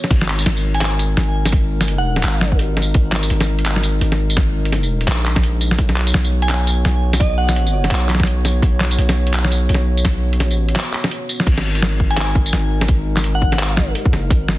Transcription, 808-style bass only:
0.11 G#1
0.46 G#1
1.17 G#1
2.24 G#1
2.95 G#1
3.30 G#1
4.01 G#1
5.07 A#1
5.79 B1
6.14 B1
6.85 B1
7.91 B1
8.63 B1
8.98 B1
9.70 B1
10.44 A#1
11.47 G#1
12.53 G#1
12.89 G#1
14.13 F#1
14.31 G#1

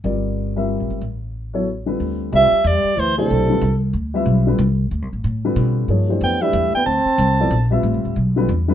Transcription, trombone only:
2.33 G3
2.65 G3
2.97 E3
3.18 C3
6.22 B3
6.42 G3
6.76 B3
6.86 C4

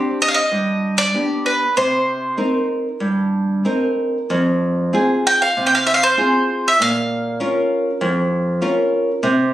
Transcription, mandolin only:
Already playing: C5
0.22 D#5
0.28 F5
0.34 D#5
0.98 D5
1.46 B4
1.77 C5
5.27 G5
5.42 F5
5.66 G5
5.75 F5
5.87 E5
5.94 F5
6.03 C5
6.68 E5
6.82 F5

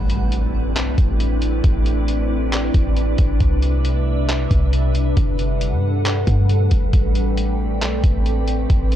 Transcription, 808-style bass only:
Already playing: A1
0.76 B1
0.98 A1
1.64 A1
2.74 A1
3.19 A1
3.41 C2
4.51 C2
5.17 G1
5.72 G2
6.27 G2
6.72 G1
6.93 A1
7.82 B1
8.04 A1
8.70 A1

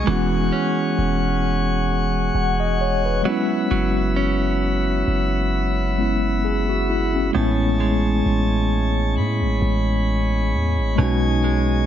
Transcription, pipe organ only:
Already playing: G#4 C#6
0.08 F#5
3.25 F#4 E5 B5
7.34 G#3 C#5 A5
9.17 B5
10.98 D#4 G#5

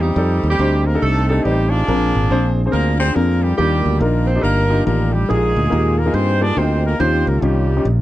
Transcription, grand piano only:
0.16 D#4 G4 A4 D5
0.59 D4 D#4 G4 C5
0.94 D4 D#4 G4 A4
1.30 D4 D#4 G4 A4
1.45 D#4 G4 B4 D5
1.51 C5
1.88 A#2 C4 D4 G#4 A#4
2.30 C4 D4 G#4 C5
2.65 C4 D4 G#4 C5
3.00 C4 D4 G#4 C5
3.15 C4 D4 G#4 A#4
3.57 D#3 A#3 D4 F4 G4
4.01 D4 D#4 F4 A#4
4.35 D4 D#4 F4 G4
4.69 D4 D#4 F4 G4
4.86 D#3 D4 F4 G4
5.29 A#2 A#3 D#4 F4 G4
5.35 G#4
5.70 A#3 D#4 F4 G4
6.06 A#3 D#4 F4 G#4
6.41 A#3 D#4 F4 G#4
6.57 A#3 D4 F4 G5
6.62 D#4
6.99 D#3 C#4 D#4 F4 G4
7.42 C#4 D#4 F4 G4
7.76 C#4 D#4 F4 G4
7.85 A#2

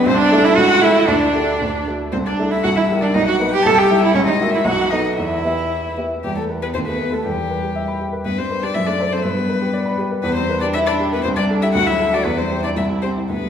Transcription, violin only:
0.08 C5
0.21 D5
0.46 E5
0.61 F#5
0.84 E5
1.08 D5
2.12 C5
2.26 D5
2.52 E5
2.64 F#5
2.75 E5
3.01 D5
3.14 D#5
3.27 F#5
3.50 G5
3.62 A5
3.74 G5
3.99 E5
4.13 C#5
4.26 D#5
4.50 E5
4.65 F#5
4.90 D#5
5.17 E5
6.24 G4
6.36 A4
6.62 B4
6.74 C5
6.87 B4
7.14 A4
7.26 G4
8.25 B4
8.38 C5
8.63 D5
8.74 E5
8.86 D5
9.12 C5
9.23 B4
10.23 B4
10.35 C5
10.61 D5
10.73 E5
10.86 D5
11.13 B4
11.23 C5
11.36 D5
11.62 E5
11.74 F#5
11.87 E5
12.14 D5
12.24 B4
12.38 C5
12.64 D5
12.77 E5
13.02 C5
13.31 B4

